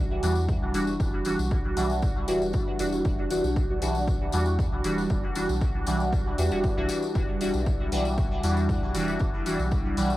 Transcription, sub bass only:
0.00 0.20 B1 loud
0.23 0.59 E2 medium
0.62 0.72 B1 loud
0.74 0.96 E1 loud
1.00 1.36 E1 loud
1.39 1.74 B1 loud
1.77 2.25 B1 loud
2.28 2.39 D1 medium
2.41 2.52 E1 medium
2.79 3.01 E1 loud
3.05 3.41 E1 loud
3.44 3.79 B1 loud
3.82 4.30 B1 loud
4.33 4.69 E2 medium
4.72 4.83 B1 medium
4.84 5.06 E1 loud
5.49 5.84 B1 loud
5.87 6.35 B1 loud
6.38 6.50 E2 loud
6.52 6.73 E1 loud
6.77 6.88 B1 medium
7.15 7.51 E1 loud
7.54 7.89 B1 loud
7.92 8.40 B1 loud
8.43 8.79 E2 medium
8.82 8.93 B1 medium
8.95 9.17 E1 loud
9.20 9.56 E1 loud
9.59 9.94 B1 loud
9.97 10.17 B1 loud

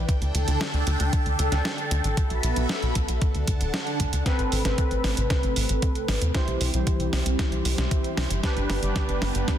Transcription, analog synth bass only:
0.22 0.32 D2 medium
0.35 0.45 D2 medium
0.48 0.58 D2 medium
0.74 0.84 D2 medium
0.87 0.97 D2 loud
1.00 1.10 D2 medium
1.26 1.36 D2 medium
1.39 1.49 D2 medium
1.52 1.62 D2 medium
1.91 2.01 D2 medium
2.04 2.14 A1 medium
2.31 2.40 B1 medium
2.44 2.53 B1 medium
2.57 2.67 B1 medium
2.83 2.93 B1 medium
2.96 3.06 B1 medium
3.09 3.19 B1 medium
3.35 3.45 D2 medium
3.48 3.58 D2 medium
3.61 3.71 D1 medium
4.00 4.10 D2 medium
4.13 4.23 D2 medium
4.39 4.49 A1 medium
4.52 4.62 A1 medium
4.65 4.75 A1 medium
4.91 5.01 A1 medium
5.04 5.14 A1 medium
5.17 5.27 A1 medium
5.44 5.53 A1 medium
5.57 5.66 A1 medium
5.70 5.80 A1 medium
6.09 6.19 A1 medium
6.22 6.32 E2 medium
6.48 6.58 C2 medium
6.61 6.71 C2 medium
6.74 6.84 C2 medium
7.00 7.10 C2 medium
7.13 7.23 C2 medium
7.26 7.36 C2 medium
7.52 7.62 C2 medium
7.65 7.75 C2 loud
7.78 7.88 C2 medium
8.17 8.27 C2 medium
8.30 8.40 G1 medium
8.56 8.66 G1 medium
8.70 8.79 G1 medium
8.83 8.93 G1 medium
9.09 9.19 G1 medium
9.22 9.32 G1 loud
9.35 9.45 G1 medium

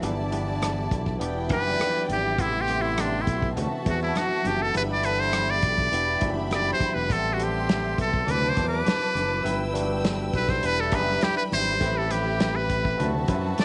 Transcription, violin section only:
0.03 1.18 E4 medium
0.03 1.18 D5 medium
0.03 1.18 A5 medium
1.20 2.36 E4 medium
1.20 2.36 D5 medium
1.20 2.36 G5 medium
2.39 3.54 G4 medium
2.39 3.54 E5 medium
2.39 3.54 C6 medium
3.56 4.72 F#4 medium
3.56 4.72 E5 medium
3.56 4.72 A5 medium
4.74 5.89 G4 medium
4.74 5.89 E5 medium
4.74 5.90 B5 medium
5.91 7.07 G4 medium
5.91 7.07 E5 medium
5.91 7.07 B5 loud
7.09 8.25 G4 medium
7.09 8.25 E5 medium
7.09 8.25 C6 medium
8.27 9.43 B4 medium
8.27 9.43 A5 medium
8.27 9.43 D6 medium
9.44 10.60 B4 medium
9.44 10.60 G5 medium
9.44 10.60 E6 medium
10.63 11.79 G4 medium
10.63 11.78 E5 medium
10.63 11.79 B5 loud
11.80 12.96 G4 medium
11.80 12.96 E5 medium
11.80 12.96 B5 medium
12.98 13.65 F#4 medium
12.98 13.65 E5 medium
12.98 13.65 A5 medium

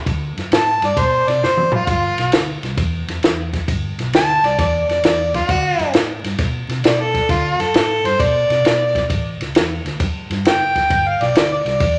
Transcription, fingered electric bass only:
0.06 0.30 D2 medium
0.37 0.48 F#2 medium
0.51 0.75 A2 medium
0.82 0.94 G2 medium
0.97 1.21 B2 medium
1.27 1.39 C3 medium
1.42 1.78 F#1 medium
1.87 2.11 G1 loud
2.18 2.29 B1 medium
2.32 2.56 D2 medium
2.63 2.74 C2 medium
2.77 3.01 E2 medium
3.08 3.20 F2 medium
3.23 3.58 E2 medium
3.68 3.92 G1 medium
3.98 4.10 B1 medium
4.13 4.37 D2 medium
4.43 4.55 C2 medium
4.59 4.82 E2 medium
4.89 5.00 F2 loud
5.03 5.39 E2 medium
5.49 5.73 D2 medium
5.79 5.90 F#2 medium
5.94 6.18 A2 medium
6.24 6.35 G2 medium
6.39 6.63 B2 medium
6.69 6.80 C3 medium
6.84 7.19 B2 medium
7.29 7.53 D2 loud
7.59 7.71 F#2 medium
7.74 7.98 A2 medium
8.04 8.16 G2 medium
8.20 8.44 B2 medium
8.50 8.61 C3 loud
8.64 9.11 B2 medium
9.10 9.34 A1 medium
9.40 9.52 C#2 medium
9.55 9.79 E2 medium
9.85 9.96 D2 medium
10.00 10.24 F#2 medium
10.30 10.42 G2 loud
10.45 10.81 F#1 medium
10.90 11.14 G1 loud
11.21 11.32 B1 loud
11.35 11.59 D2 medium
11.65 11.77 C2 medium
11.81 11.99 E2 medium

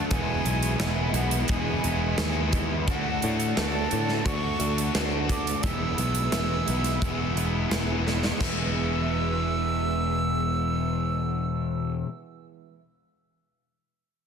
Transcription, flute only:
0.10 1.10 G#5 loud
1.15 1.47 F#5 medium
1.48 2.48 G#5 medium
2.90 3.59 F#5 medium
3.58 4.27 A5 medium
4.25 4.94 C#6 loud
5.29 5.64 D6 medium
5.63 8.05 E6 loud
8.43 11.94 E6 medium

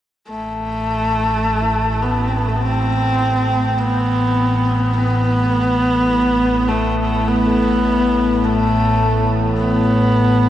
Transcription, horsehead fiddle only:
0.29 2.04 A3 medium
2.02 2.29 B3 medium
2.27 2.38 C4 soft
2.37 2.49 B3 medium
2.48 2.58 A3 medium
2.56 2.63 B3 soft
2.62 3.80 C4 medium
3.79 4.96 B3 medium
4.97 6.70 B3 medium
6.69 7.29 A3 medium
7.28 8.45 B3 medium
8.44 9.30 A3 medium
9.57 10.49 B3 medium

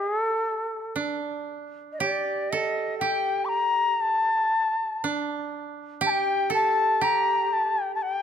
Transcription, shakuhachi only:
0.00 0.07 G4 medium
0.07 0.19 G#4 medium
0.19 0.95 A4 medium
1.92 2.00 D#5 medium
1.99 2.52 D5 medium
2.50 2.98 D#5 medium
2.98 3.47 G5 medium
3.45 4.03 A#5 medium
3.45 3.50 D6 medium
4.01 5.05 A5 medium
6.06 6.52 G5 loud
6.06 6.11 A5 medium
6.54 7.05 A5 medium
7.03 7.54 A#5 medium
7.53 7.82 A5 medium
7.82 7.94 G5 medium
7.95 8.04 A5 medium
8.02 8.22 G5 loud

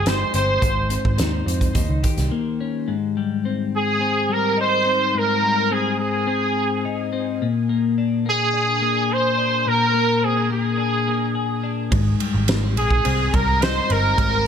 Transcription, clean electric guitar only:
0.00 0.62 F2 medium
0.00 0.33 C4 medium
0.00 0.68 G4 medium
0.05 0.68 G#3 medium
0.34 0.68 C4 medium
0.62 1.81 G#2 medium
0.90 1.45 C4 medium
1.18 2.03 D#4 medium
1.46 1.81 C4 medium
1.75 5.25 D#3 medium
2.03 4.57 G4 medium
2.32 2.94 A#3 medium
2.61 2.94 C#4 medium
2.88 5.13 G#2 medium
3.17 3.73 G3 medium
3.45 4.00 C4 medium
4.01 4.84 C4 medium
4.29 5.41 G3 medium
4.57 6.84 D#4 medium
4.86 5.69 C4 medium
5.14 7.40 G#2 medium
5.42 5.99 G3 medium
5.71 6.26 C4 medium
6.27 7.11 C4 medium
6.85 7.47 D#4 medium
7.13 7.46 C4 medium
7.42 9.65 A#2 medium
7.69 8.25 A#3 medium
7.98 8.52 D4 medium
8.26 8.80 A#3 medium
8.53 9.36 D4 medium
8.82 9.93 A#3 medium
9.10 11.35 G#4 medium
9.37 10.22 D4 medium
9.66 11.91 A#2 medium
9.94 10.49 A#3 medium
10.23 10.37 C4 medium
10.37 10.76 D4 medium
10.50 11.06 A#3 medium
10.78 11.62 D4 medium
11.08 11.98 A#3 medium
11.35 12.24 G#4 medium
11.64 11.98 D4 medium
11.91 14.15 G#2 medium
12.21 12.77 G3 medium
12.49 12.63 A#3 medium
12.63 13.04 C4 medium
13.05 13.88 C4 medium
13.33 14.45 G3 medium
13.61 14.47 D#4 medium
13.89 14.47 C4 medium
14.16 14.47 G#2 medium

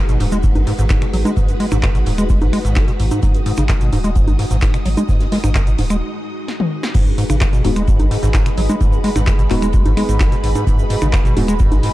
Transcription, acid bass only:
0.09 0.18 B2 medium
0.20 0.27 G#2 loud
0.32 0.38 G#3 loud
0.44 0.57 G#2 medium
0.55 0.62 F#2 medium
0.67 0.73 G#2 loud
0.79 0.85 G#2 loud
0.90 1.00 G#2 medium
1.02 1.06 B2 medium
1.13 1.17 F#3 medium
1.25 1.32 G#3 loud
1.37 1.50 G#2 medium
1.48 1.55 F#2 medium
1.60 1.66 G#3 loud
1.72 1.78 G#2 medium
1.83 1.90 F#2 medium
1.95 1.99 B2 medium
2.07 2.13 G#2 medium
2.18 2.25 G#3 loud
2.30 2.39 G#3 medium
2.42 2.48 G#2 medium
2.53 2.59 G#3 loud
2.65 2.78 G#2 medium
2.76 2.86 D#3 loud
2.88 2.92 B2 medium
3.00 3.06 G#2 medium
3.11 3.21 G#2 medium
3.23 3.36 G#2 medium
3.35 3.41 F#2 medium
3.46 3.53 G#2 loud
3.58 3.64 C#3 medium
3.69 3.73 F#2 loud
3.81 3.91 B2 medium
3.93 3.99 G#2 loud
4.04 4.11 G#3 loud
4.16 4.29 G#2 medium
4.28 4.34 F#2 medium
4.39 4.46 G#2 loud
4.51 4.57 G#2 loud
4.62 4.72 G#2 medium
4.74 4.78 B2 medium
4.86 4.89 F#3 medium
4.97 5.04 G#3 loud
5.09 5.22 G#2 medium
5.20 5.27 F#2 medium
5.32 5.38 G#3 loud
5.44 5.50 G#2 loud
5.55 5.62 F#2 medium
5.67 5.71 B2 medium
5.79 5.85 G#2 medium
5.90 5.97 G#3 loud
6.95 7.08 G#2 medium
7.07 7.13 F#2 medium
7.18 7.24 G#2 loud
7.30 7.36 C#3 medium
7.41 7.45 F#2 loud
7.53 7.63 B2 medium
7.65 7.71 G#2 loud
7.76 7.83 G#3 loud
7.88 8.01 G#2 medium
7.99 8.06 F#2 medium
8.11 8.18 G#2 loud
8.23 8.29 G#2 loud
8.34 8.44 G#2 medium
8.46 8.50 B2 medium
8.58 8.61 F#3 medium
8.69 8.76 G#3 loud
8.81 8.94 G#2 medium
8.93 8.99 F#2 medium
9.04 9.11 G#3 loud
9.16 9.22 G#2 loud
9.27 9.34 F#2 medium
9.39 9.43 B2 medium
9.51 9.57 G#2 medium
9.62 9.69 G#3 loud
9.74 9.84 G#3 medium
9.86 9.92 G#2 medium
9.97 10.04 G#3 loud
10.09 10.22 G#2 medium
10.20 10.30 D#3 loud
10.32 10.36 B2 medium
10.44 10.50 G#2 medium
10.55 10.65 G#2 medium
10.79 10.85 F#2 medium
10.90 10.97 G#2 loud
11.02 11.08 C#3 medium
11.13 11.17 F#2 loud
11.25 11.35 B2 medium
11.37 11.43 G#2 loud
11.48 11.55 G#3 loud
11.60 11.73 G#2 medium
11.72 11.78 F#2 medium
11.83 11.90 G#2 loud

